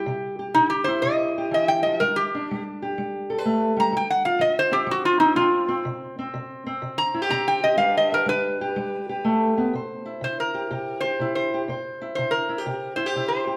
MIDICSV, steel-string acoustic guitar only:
0, 0, Header, 1, 2, 480
1, 0, Start_track
1, 0, Key_signature, 0, "major"
1, 0, Tempo, 484262
1, 58, Time_signature, 4, 2, 24, 8
1, 13449, End_track
2, 0, Start_track
2, 0, Title_t, "Steel-string acoustic guitar"
2, 0, Program_c, 0, 25
2, 0, Note_on_c, 0, 55, 58
2, 0, Note_on_c, 0, 67, 65
2, 61, Note_on_c, 0, 48, 76
2, 383, Note_off_c, 0, 67, 0
2, 387, Note_on_c, 0, 67, 57
2, 507, Note_off_c, 0, 48, 0
2, 550, Note_on_c, 0, 48, 79
2, 869, Note_on_c, 0, 64, 66
2, 991, Note_off_c, 0, 48, 0
2, 1016, Note_on_c, 0, 48, 76
2, 1342, Note_off_c, 0, 67, 0
2, 1364, Note_on_c, 0, 67, 61
2, 1464, Note_off_c, 0, 48, 0
2, 1498, Note_on_c, 0, 52, 62
2, 1818, Note_off_c, 0, 52, 0
2, 1841, Note_on_c, 0, 53, 61
2, 1962, Note_off_c, 0, 64, 0
2, 1970, Note_off_c, 0, 67, 0
2, 1974, Note_off_c, 0, 55, 0
2, 1987, Note_on_c, 0, 55, 76
2, 1988, Note_off_c, 0, 53, 0
2, 2325, Note_on_c, 0, 62, 56
2, 2429, Note_off_c, 0, 55, 0
2, 2489, Note_on_c, 0, 55, 79
2, 2799, Note_on_c, 0, 67, 66
2, 2920, Note_off_c, 0, 55, 0
2, 2953, Note_on_c, 0, 55, 77
2, 3270, Note_on_c, 0, 69, 65
2, 3354, Note_off_c, 0, 69, 0
2, 3354, Note_on_c, 0, 71, 63
2, 3391, Note_off_c, 0, 55, 0
2, 3423, Note_on_c, 0, 57, 66
2, 3729, Note_off_c, 0, 57, 0
2, 3733, Note_on_c, 0, 55, 66
2, 3885, Note_off_c, 0, 67, 0
2, 3888, Note_off_c, 0, 62, 0
2, 3889, Note_on_c, 0, 53, 72
2, 3892, Note_off_c, 0, 55, 0
2, 3903, Note_off_c, 0, 71, 0
2, 4220, Note_on_c, 0, 65, 54
2, 4338, Note_off_c, 0, 53, 0
2, 4352, Note_on_c, 0, 53, 74
2, 4671, Note_on_c, 0, 60, 66
2, 4809, Note_off_c, 0, 53, 0
2, 4822, Note_on_c, 0, 53, 86
2, 5141, Note_off_c, 0, 60, 0
2, 5153, Note_on_c, 0, 60, 62
2, 5284, Note_off_c, 0, 53, 0
2, 5309, Note_off_c, 0, 60, 0
2, 5317, Note_on_c, 0, 53, 85
2, 5324, Note_on_c, 0, 60, 65
2, 5621, Note_off_c, 0, 60, 0
2, 5633, Note_on_c, 0, 60, 67
2, 5772, Note_off_c, 0, 53, 0
2, 5794, Note_off_c, 0, 65, 0
2, 5798, Note_on_c, 0, 48, 79
2, 6121, Note_off_c, 0, 60, 0
2, 6131, Note_on_c, 0, 60, 62
2, 6251, Note_off_c, 0, 48, 0
2, 6281, Note_on_c, 0, 48, 79
2, 6594, Note_off_c, 0, 60, 0
2, 6606, Note_on_c, 0, 60, 68
2, 6732, Note_off_c, 0, 48, 0
2, 6758, Note_on_c, 0, 48, 86
2, 7081, Note_on_c, 0, 64, 62
2, 7154, Note_off_c, 0, 64, 0
2, 7154, Note_on_c, 0, 67, 53
2, 7210, Note_off_c, 0, 48, 0
2, 7242, Note_on_c, 0, 48, 77
2, 7246, Note_off_c, 0, 60, 0
2, 7256, Note_on_c, 0, 60, 67
2, 7561, Note_off_c, 0, 67, 0
2, 7574, Note_on_c, 0, 67, 64
2, 7692, Note_off_c, 0, 48, 0
2, 7702, Note_on_c, 0, 55, 76
2, 7710, Note_off_c, 0, 60, 0
2, 7714, Note_on_c, 0, 62, 64
2, 7721, Note_off_c, 0, 67, 0
2, 7725, Note_on_c, 0, 67, 59
2, 7728, Note_on_c, 0, 71, 72
2, 8037, Note_off_c, 0, 71, 0
2, 8049, Note_on_c, 0, 71, 69
2, 8162, Note_off_c, 0, 55, 0
2, 8187, Note_on_c, 0, 55, 83
2, 8525, Note_off_c, 0, 67, 0
2, 8536, Note_on_c, 0, 67, 69
2, 8645, Note_off_c, 0, 55, 0
2, 8684, Note_on_c, 0, 55, 86
2, 9002, Note_off_c, 0, 67, 0
2, 9013, Note_on_c, 0, 67, 66
2, 9134, Note_off_c, 0, 55, 0
2, 9163, Note_on_c, 0, 57, 74
2, 9486, Note_off_c, 0, 57, 0
2, 9492, Note_on_c, 0, 59, 74
2, 9622, Note_off_c, 0, 62, 0
2, 9629, Note_off_c, 0, 71, 0
2, 9632, Note_off_c, 0, 67, 0
2, 9649, Note_on_c, 0, 48, 69
2, 9650, Note_off_c, 0, 59, 0
2, 9667, Note_on_c, 0, 72, 59
2, 9967, Note_on_c, 0, 64, 46
2, 10097, Note_off_c, 0, 48, 0
2, 10121, Note_on_c, 0, 48, 66
2, 10451, Note_on_c, 0, 67, 57
2, 10574, Note_off_c, 0, 48, 0
2, 10607, Note_off_c, 0, 67, 0
2, 10611, Note_on_c, 0, 48, 74
2, 10611, Note_on_c, 0, 67, 62
2, 10931, Note_off_c, 0, 67, 0
2, 10942, Note_on_c, 0, 67, 52
2, 11061, Note_off_c, 0, 48, 0
2, 11091, Note_off_c, 0, 64, 0
2, 11096, Note_on_c, 0, 48, 66
2, 11114, Note_on_c, 0, 64, 58
2, 11418, Note_off_c, 0, 67, 0
2, 11437, Note_on_c, 0, 67, 57
2, 11544, Note_off_c, 0, 48, 0
2, 11565, Note_off_c, 0, 64, 0
2, 11566, Note_off_c, 0, 67, 0
2, 11578, Note_on_c, 0, 48, 68
2, 11587, Note_off_c, 0, 72, 0
2, 11591, Note_on_c, 0, 72, 63
2, 11909, Note_on_c, 0, 64, 54
2, 12026, Note_off_c, 0, 48, 0
2, 12074, Note_on_c, 0, 48, 70
2, 12368, Note_off_c, 0, 64, 0
2, 12380, Note_on_c, 0, 64, 57
2, 12470, Note_off_c, 0, 64, 0
2, 12470, Note_on_c, 0, 67, 49
2, 12515, Note_off_c, 0, 48, 0
2, 12538, Note_off_c, 0, 67, 0
2, 12547, Note_on_c, 0, 48, 72
2, 12552, Note_on_c, 0, 67, 57
2, 12850, Note_off_c, 0, 67, 0
2, 12854, Note_on_c, 0, 64, 55
2, 12946, Note_off_c, 0, 64, 0
2, 12946, Note_on_c, 0, 67, 53
2, 12993, Note_off_c, 0, 48, 0
2, 13040, Note_on_c, 0, 48, 72
2, 13045, Note_on_c, 0, 64, 54
2, 13340, Note_off_c, 0, 67, 0
2, 13352, Note_on_c, 0, 67, 57
2, 13449, Note_off_c, 0, 48, 0
2, 13449, Note_off_c, 0, 64, 0
2, 13449, Note_off_c, 0, 67, 0
2, 13449, Note_off_c, 0, 72, 0
2, 13449, End_track
0, 0, End_of_file